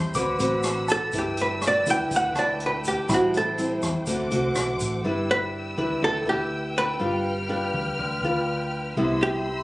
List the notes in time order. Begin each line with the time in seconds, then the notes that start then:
Already playing: A2 G3 C4 E4 A4 C6 G6
0.14 D2 D3 C4 F#4 B4 F#5 B5 D6 E6, kick, closed hi-hat, shaker
0.39 A1 C4 F#4 B4, closed hi-hat, shaker
0.63 cross-stick, closed hi-hat, shaker
0.88 A4 A5, kick, closed hi-hat, shaker
1.12 G1 G3 D4 E4 B4 G5, kick, closed hi-hat, shaker
1.18 G4
1.37 closed hi-hat, shaker
1.41 B4
1.62 cross-stick, closed hi-hat, shaker
1.67 D5
1.86 D2 D4 E4 B4, kick, closed hi-hat, shaker
1.90 G5
2.11 D2 D3, kick, closed hi-hat, shaker
2.16 F#5
2.35 D2 D4 E4 B4 D5 A5, cross-stick, closed hi-hat, shaker
2.60 closed hi-hat
2.66 B4
2.84 G4, kick, closed hi-hat, shaker
3.08 A1 A2 G3 C4 E4 A4 C5 B5, kick, cross-stick, closed hi-hat, shaker
3.14 F#4
3.34 A4, closed hi-hat, shaker
3.58 G3 C4 E4, closed hi-hat, shaker
3.82 E2, kick, cross-stick, closed hi-hat, shaker
4.06 D2 D3 A3 C4 F#4 C5 F#5 D6, kick, closed hi-hat, shaker
4.31 C2 A3 C4 F#4, closed hi-hat, shaker
4.55 B1, cross-stick, closed hi-hat, shaker
4.80 A1, kick, closed hi-hat, shaker
5.04 G1 G3 D4 E4 B4 G5 E6
5.31 B4
5.77 D2 D4 E4 B4
6.02 D2 D3 A4
6.25 D2 D4 E4 G4 B4
6.78 B4
6.99 G1 G3 D4 F4 B4 F6
7.49 D4 F4 B4
7.74 D2
7.99 D2 D3
8.23 D2 D4 F4 B4
8.96 C2 C3 G3 B3 E4 B5 C6 E6
9.23 G4